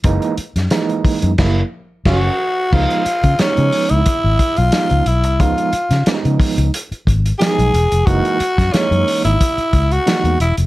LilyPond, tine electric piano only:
\new Staff \with { instrumentName = "Tine electric piano" } { \time 4/4 \key ges \major \tempo 4 = 90 <fes aes bes ees'>8 r8 <fes aes bes ees'>4 <bes fes'>8 r8 <des' ges'>8 r8 | <f aes ces' ees'>8 r8 <f aes ces' ees'>4 r4 <f aes ces' ees'>8 r8 | <f aes ces' ees'>8 r8 <f aes ces' des' ees'>4 r4 <f aes ces' ees'>8 r8 | <fes aes bes ees'>8 r8 <fes aes bes des' ees'>4 r4 <fes aes bes ees'>8 r8 | }